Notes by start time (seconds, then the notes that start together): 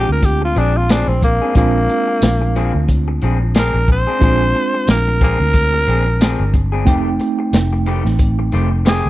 Already playing: G#3 C4 D4 F4
0.08 D2 A#4, muted clean electric guitar stroke
0.23 G4, kick, closed hi-hat
0.41 F4, muted clean electric guitar stroke
0.56 A#1 F3 C4 D4 G#4, closed hi-hat
0.75 F4, muted clean electric guitar stroke
0.89 F3 C4 D4 G#4, snare, closed hi-hat, tambourine
1.08 A#1 C4
1.22 A#3, muted clean electric guitar stroke, kick, closed hi-hat
1.42 C4 D4 G#4
1.55 A#1 F3 G#3 A#3 C4 D4 F4 G#4, kick, closed hi-hat
1.89 muted clean electric guitar stroke, closed hi-hat
2.08 muted clean electric guitar stroke
2.22 A#1, muted clean electric guitar stroke, snare, closed hi-hat, tambourine
2.41 muted clean electric guitar stroke
2.56 F3 C4 D4 G#4, closed hi-hat
2.74 D2, muted clean electric guitar stroke
2.88 kick, closed hi-hat
3.08 muted clean electric guitar stroke
3.22 A#1 F3 C4 D4 G#4, closed hi-hat
3.41 muted clean electric guitar stroke
3.55 F3 C4 D4 G#4, snare, closed hi-hat, tambourine
3.59 A#4
3.74 A#1
3.88 muted clean electric guitar stroke, kick, closed hi-hat
3.92 C5
4.07 C4 D4 G#4
4.19 A#1 F3 G#3 C4 D4 F4, kick, closed hi-hat
4.23 G#4
4.54 muted clean electric guitar stroke, closed hi-hat
4.74 muted clean electric guitar stroke
4.87 A#1 A#4, muted clean electric guitar stroke, snare, closed hi-hat, tambourine
5.08 muted clean electric guitar stroke
5.21 F3 C4 D4 G#4 A#4, kick, closed hi-hat
5.40 D2, muted clean electric guitar stroke
5.54 kick, closed hi-hat
5.74 muted clean electric guitar stroke
5.87 A#1 F3 C4 D4 G#4, closed hi-hat
6.06 muted clean electric guitar stroke
6.21 F3 C4 D4 G#4, snare, closed hi-hat, tambourine
6.40 G1
6.54 muted clean electric guitar stroke, kick, closed hi-hat
6.72 C4 D4 G#4
6.85 F1 D#3 A3 C4 D#4 G4 G5, kick, closed hi-hat
7.20 muted clean electric guitar stroke, closed hi-hat
7.39 muted clean electric guitar stroke
7.53 F1, muted clean electric guitar stroke, snare, closed hi-hat, tambourine
7.73 muted clean electric guitar stroke
7.86 D#3 A3 C4 G4, closed hi-hat
8.05 A1, muted clean electric guitar stroke, snare
8.19 kick, closed hi-hat
8.39 muted clean electric guitar stroke
8.52 F1 D#3 A3 C4 G4, closed hi-hat
8.71 muted clean electric guitar stroke
8.85 D#3 A3 C4 G4 G#4, snare, closed hi-hat, tambourine
9.06 D2